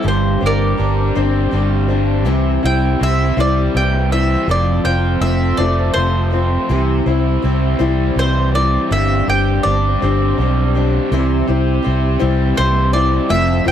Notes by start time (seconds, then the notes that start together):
Already playing: G3 C4 G4
0.03 G1 G2 G3 C4 D4 G4 C5
0.08 C5
0.41 G1 D4 G4 C5
0.46 A#4 D5
0.77 G1 G3 D4 G4 C5
1.15 G1 G3 C4 D4 G4 C5
1.51 G1 G3 D4 G4 C5
1.88 D4 G4 C5
2.25 C2 C3 E3 G3 C4 E4 G4 C5
2.62 C2 G3 C4 E4 C5 G5
3.01 C2 G3 C4 E4 C5 E5
3.37 C2 C3 E3 G3 C4 E4 C5 D5
3.74 C2 E3 G3 C4 E4 C5 G5
4.11 G3 C4 E4 C5 E5
4.47 F1 F2 F3 A3 C4 F4 A4 C5 D5
4.84 F1 C4 F4 C5 G5
5.21 F1 A3 C4 F4 C5 E5
5.57 F1 F3 A3 C4 F4 C5 D5
5.94 F1 F3 A3 C4 F4 C5
5.98 C5
6.32 C4 F4 C5
6.69 C2 C3 E3 G3 C4 E4 G4 C5
7.06 C2 G3 C4 E4 C5
7.42 C2 G3 C4 E4 C5
7.79 C2 C3 E3 G3 C4 E4 C5
8.16 C2 E3 G3 C4 E4 C5
8.54 G3 C4 E4 C5 D5
8.90 G1 G2 G3 C4 D4 G4 C5 E5
9.27 G1 D4 G4 C5 G5
9.63 G1 G3 D4 D5
9.68 G4 C5
10.02 G1 G3 C4 D4 G4 C5
10.38 B1 G3 D4 G4 C5
10.75 D4 G4 C5
11.09 C2 C3 E3 G3 C4 E4 G4 C5
11.13 C4 E4 C5
11.47 C2 G3 C4 E4 G4 C5
11.83 C2 G3 C4 E4 C5
12.19 C2 C3 E3 G3 C4 E4 C5
12.55 C2 E3 G3 C4 E4 C5
12.93 G3 C4 E4 C5 D5
13.28 F1 F2 F3 A3 C4 F4 A4 C5 E5
13.65 F1 C4 F4 C5 G5